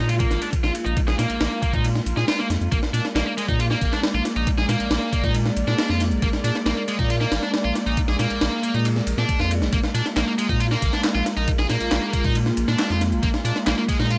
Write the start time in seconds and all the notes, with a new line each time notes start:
Already playing: G#3 A#3 F4
0.00 A#2
0.09 F4, closed hi-hat, ride
0.20 A#3, kick, closed hi-hat, ride
0.31 G#1, snare, closed hi-hat
0.42 D4, closed hi-hat, ride
0.53 kick, closed hi-hat, ride
0.64 A#1 F4, snare, closed hi-hat
0.75 closed hi-hat, ride
0.85 A#1 D#4, closed hi-hat
0.97 A#1, kick, closed hi-hat, ride
1.08 A#1 G#4, snare, closed hi-hat
1.19 A#2 A#3, snare, closed hi-hat, ride
1.30 A#1, closed hi-hat, ride
1.41 A#1, snare, closed hi-hat, ride
1.52 closed hi-hat
1.62 A#3, kick, closed hi-hat, ride
1.73 A#2 D#4, kick, closed hi-hat
1.84 closed hi-hat, ride
1.95 snare, closed hi-hat
2.06 A#1, closed hi-hat, ride
2.17 A#2 G#4, snare, closed hi-hat
2.28 F4, snare, closed hi-hat, open hi-hat
2.39 A#3, snare, closed hi-hat
2.50 F2, snare, closed hi-hat, ride
2.61 F2, closed hi-hat
2.72 A#1 A#3 D5, kick, closed hi-hat, ride
2.83 snare, closed hi-hat
2.93 A#2 D4, closed hi-hat, ride
3.05 snare, closed hi-hat
3.15 A#1 A#3, snare, closed hi-hat, ride
3.27 A#3, closed hi-hat
3.38 G#3, closed hi-hat, ride
3.49 A#2 D#4, kick, closed hi-hat
3.60 F4, closed hi-hat, ride
3.71 A#3, snare, closed hi-hat
3.81 G#1, kick, closed hi-hat, ride
3.93 D4, snare, closed hi-hat
4.03 snare, closed hi-hat, ride
4.14 A#1 F4, closed hi-hat
4.25 snare, closed hi-hat, ride
4.36 A#1 D#4, closed hi-hat
4.47 A#1, kick, closed hi-hat, ride
4.58 A#1 G#4, snare, closed hi-hat
4.69 A#2 A#3, snare, closed hi-hat, ride
4.80 A#1, closed hi-hat, ride
4.91 A#1, snare, closed hi-hat, ride
5.02 closed hi-hat
5.13 A#3, kick, closed hi-hat, ride
5.24 A#2 D#4, kick, closed hi-hat
5.34 closed hi-hat, ride
5.46 snare, closed hi-hat
5.57 A#1, closed hi-hat, ride
5.67 A#2 D4, snare, closed hi-hat
5.78 snare, closed hi-hat, open hi-hat
5.89 F2 F4, snare, closed hi-hat
6.00 snare, closed hi-hat, ride
6.11 A#1, closed hi-hat
6.22 A#1 A#3, kick, closed hi-hat, ride
6.33 snare, closed hi-hat
6.44 A#2 D4, closed hi-hat, ride
6.55 snare, closed hi-hat
6.66 A#1 A#3, snare, closed hi-hat, ride
6.77 A#3, closed hi-hat
6.88 G#3, closed hi-hat, ride
6.99 A#2 D#4, kick, closed hi-hat
7.10 F4, closed hi-hat, ride
7.21 A#3, snare, closed hi-hat
7.32 G#1, snare, closed hi-hat, ride
7.43 D4, snare, closed hi-hat
7.54 snare, closed hi-hat, ride
7.65 A#1 F4, closed hi-hat
7.75 snare, closed hi-hat, ride
7.86 A#1 D#4, closed hi-hat
7.97 A#1, kick, closed hi-hat, ride
8.08 A#1 G#4, snare, closed hi-hat
8.19 A#2 A#3, snare, closed hi-hat, ride
8.30 A#1, closed hi-hat, ride
8.41 A#1, snare, closed hi-hat, ride
8.52 closed hi-hat
8.63 A#3, closed hi-hat
8.74 A#2 D#4, closed hi-hat
8.85 closed hi-hat, ride
8.96 snare, closed hi-hat
9.07 A#1, closed hi-hat, ride
9.18 A#2 D4, snare, closed hi-hat
9.29 kick, closed hi-hat, ride
9.40 F2 F4, snare, closed hi-hat
9.51 closed hi-hat, ride
9.61 A#1, snare, closed hi-hat
9.73 A#1 A#3 F4, kick, closed hi-hat, ride
9.84 snare, closed hi-hat
9.94 A#2 D4, closed hi-hat, ride
10.06 snare, closed hi-hat
10.16 A#1 A#3, snare, clap, closed hi-hat, ride
10.28 A#3, closed hi-hat
10.38 G#3, closed hi-hat, ride
10.49 A#2 D#4, kick, closed hi-hat
10.60 F4, closed hi-hat, ride
10.71 A#3, snare, closed hi-hat
10.82 G#1, kick, closed hi-hat, ride
10.93 D4, snare, closed hi-hat
11.04 snare, clap, closed hi-hat, ride
11.15 A#1 F4, closed hi-hat
11.26 snare, closed hi-hat, ride
11.37 A#1 D#4, closed hi-hat
11.48 A#1, kick, closed hi-hat, ride
11.59 A#1 G#4, snare, closed hi-hat
11.70 A#2 A#3, snare, closed hi-hat, ride
11.81 A#1, closed hi-hat, ride
11.91 A#1, snare, clap, closed hi-hat, ride
12.03 closed hi-hat
12.13 A#3, kick, closed hi-hat, ride
12.24 A#2 D#4, kick, closed hi-hat
12.35 closed hi-hat, ride
12.46 snare, closed hi-hat
12.57 A#1, closed hi-hat, ride
12.68 A#2 D4, snare, closed hi-hat
12.79 snare, clap, closed hi-hat, open hi-hat
12.90 F2 F4, snare, closed hi-hat
13.01 snare, closed hi-hat, ride
13.12 A#1, closed hi-hat
13.23 A#1 A#3, kick, closed hi-hat, ride
13.34 snare, closed hi-hat
13.45 A#2 D4, closed hi-hat, ride
13.56 snare, closed hi-hat
13.67 A#1 A#3, snare, clap, closed hi-hat, ride
13.78 A#3, closed hi-hat
13.89 G#3, kick, closed hi-hat, ride
13.99 A#2 D#4, snare, closed hi-hat
14.11 F4, closed hi-hat, ride